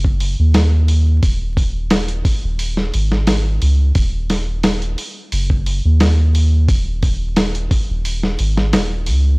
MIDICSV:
0, 0, Header, 1, 3, 480
1, 0, Start_track
1, 0, Tempo, 681818
1, 868, Time_signature, 4, 2, 24, 8
1, 6608, End_track
2, 0, Start_track
2, 0, Title_t, "Sub bass"
2, 0, Program_c, 0, 38
2, 0, Note_on_c, 0, 30, 78
2, 250, Note_off_c, 0, 30, 0
2, 277, Note_on_c, 0, 39, 89
2, 847, Note_off_c, 0, 39, 0
2, 864, Note_on_c, 0, 27, 87
2, 1564, Note_off_c, 0, 27, 0
2, 1718, Note_on_c, 0, 27, 89
2, 2048, Note_off_c, 0, 27, 0
2, 2072, Note_on_c, 0, 32, 85
2, 2528, Note_off_c, 0, 32, 0
2, 2548, Note_on_c, 0, 37, 69
2, 2761, Note_off_c, 0, 37, 0
2, 2788, Note_on_c, 0, 27, 94
2, 3486, Note_off_c, 0, 27, 0
2, 3749, Note_on_c, 0, 30, 79
2, 4090, Note_off_c, 0, 30, 0
2, 4119, Note_on_c, 0, 39, 95
2, 4707, Note_on_c, 0, 27, 94
2, 4717, Note_off_c, 0, 39, 0
2, 5405, Note_off_c, 0, 27, 0
2, 5562, Note_on_c, 0, 27, 89
2, 5890, Note_off_c, 0, 27, 0
2, 5910, Note_on_c, 0, 32, 80
2, 6153, Note_on_c, 0, 27, 79
2, 6164, Note_off_c, 0, 32, 0
2, 6388, Note_on_c, 0, 37, 89
2, 6399, Note_off_c, 0, 27, 0
2, 6601, Note_off_c, 0, 37, 0
2, 6608, End_track
3, 0, Start_track
3, 0, Title_t, "Drums"
3, 31, Note_on_c, 9, 36, 85
3, 102, Note_off_c, 9, 36, 0
3, 143, Note_on_c, 9, 46, 63
3, 214, Note_off_c, 9, 46, 0
3, 382, Note_on_c, 9, 46, 79
3, 385, Note_on_c, 9, 38, 103
3, 452, Note_off_c, 9, 46, 0
3, 455, Note_off_c, 9, 38, 0
3, 622, Note_on_c, 9, 46, 61
3, 692, Note_off_c, 9, 46, 0
3, 864, Note_on_c, 9, 36, 95
3, 864, Note_on_c, 9, 46, 77
3, 934, Note_off_c, 9, 36, 0
3, 934, Note_off_c, 9, 46, 0
3, 1105, Note_on_c, 9, 36, 82
3, 1107, Note_on_c, 9, 46, 58
3, 1175, Note_off_c, 9, 36, 0
3, 1178, Note_off_c, 9, 46, 0
3, 1340, Note_on_c, 9, 46, 83
3, 1343, Note_on_c, 9, 38, 110
3, 1411, Note_off_c, 9, 46, 0
3, 1414, Note_off_c, 9, 38, 0
3, 1467, Note_on_c, 9, 42, 42
3, 1537, Note_off_c, 9, 42, 0
3, 1584, Note_on_c, 9, 36, 92
3, 1585, Note_on_c, 9, 46, 67
3, 1654, Note_off_c, 9, 36, 0
3, 1655, Note_off_c, 9, 46, 0
3, 1824, Note_on_c, 9, 46, 85
3, 1894, Note_off_c, 9, 46, 0
3, 1952, Note_on_c, 9, 38, 36
3, 2022, Note_off_c, 9, 38, 0
3, 2067, Note_on_c, 9, 46, 60
3, 2137, Note_off_c, 9, 46, 0
3, 2194, Note_on_c, 9, 38, 43
3, 2264, Note_off_c, 9, 38, 0
3, 2302, Note_on_c, 9, 46, 85
3, 2304, Note_on_c, 9, 38, 97
3, 2372, Note_off_c, 9, 46, 0
3, 2375, Note_off_c, 9, 38, 0
3, 2546, Note_on_c, 9, 46, 61
3, 2616, Note_off_c, 9, 46, 0
3, 2781, Note_on_c, 9, 46, 76
3, 2784, Note_on_c, 9, 36, 97
3, 2852, Note_off_c, 9, 46, 0
3, 2854, Note_off_c, 9, 36, 0
3, 3025, Note_on_c, 9, 46, 62
3, 3028, Note_on_c, 9, 38, 49
3, 3096, Note_off_c, 9, 46, 0
3, 3099, Note_off_c, 9, 38, 0
3, 3263, Note_on_c, 9, 46, 81
3, 3266, Note_on_c, 9, 38, 104
3, 3333, Note_off_c, 9, 46, 0
3, 3336, Note_off_c, 9, 38, 0
3, 3393, Note_on_c, 9, 42, 39
3, 3464, Note_off_c, 9, 42, 0
3, 3505, Note_on_c, 9, 46, 61
3, 3576, Note_off_c, 9, 46, 0
3, 3746, Note_on_c, 9, 46, 86
3, 3817, Note_off_c, 9, 46, 0
3, 3872, Note_on_c, 9, 36, 84
3, 3942, Note_off_c, 9, 36, 0
3, 3987, Note_on_c, 9, 46, 61
3, 4058, Note_off_c, 9, 46, 0
3, 4226, Note_on_c, 9, 46, 77
3, 4229, Note_on_c, 9, 38, 106
3, 4297, Note_off_c, 9, 46, 0
3, 4300, Note_off_c, 9, 38, 0
3, 4469, Note_on_c, 9, 46, 63
3, 4540, Note_off_c, 9, 46, 0
3, 4706, Note_on_c, 9, 36, 102
3, 4706, Note_on_c, 9, 46, 79
3, 4776, Note_off_c, 9, 46, 0
3, 4777, Note_off_c, 9, 36, 0
3, 4946, Note_on_c, 9, 46, 59
3, 4947, Note_on_c, 9, 36, 84
3, 5016, Note_off_c, 9, 46, 0
3, 5018, Note_off_c, 9, 36, 0
3, 5184, Note_on_c, 9, 46, 83
3, 5187, Note_on_c, 9, 38, 106
3, 5254, Note_off_c, 9, 46, 0
3, 5257, Note_off_c, 9, 38, 0
3, 5314, Note_on_c, 9, 42, 41
3, 5385, Note_off_c, 9, 42, 0
3, 5428, Note_on_c, 9, 36, 95
3, 5428, Note_on_c, 9, 46, 61
3, 5498, Note_off_c, 9, 36, 0
3, 5498, Note_off_c, 9, 46, 0
3, 5668, Note_on_c, 9, 46, 89
3, 5738, Note_off_c, 9, 46, 0
3, 5797, Note_on_c, 9, 38, 37
3, 5867, Note_off_c, 9, 38, 0
3, 5904, Note_on_c, 9, 46, 60
3, 5975, Note_off_c, 9, 46, 0
3, 6036, Note_on_c, 9, 38, 43
3, 6106, Note_off_c, 9, 38, 0
3, 6145, Note_on_c, 9, 46, 81
3, 6148, Note_on_c, 9, 38, 100
3, 6216, Note_off_c, 9, 46, 0
3, 6218, Note_off_c, 9, 38, 0
3, 6381, Note_on_c, 9, 46, 65
3, 6451, Note_off_c, 9, 46, 0
3, 6608, End_track
0, 0, End_of_file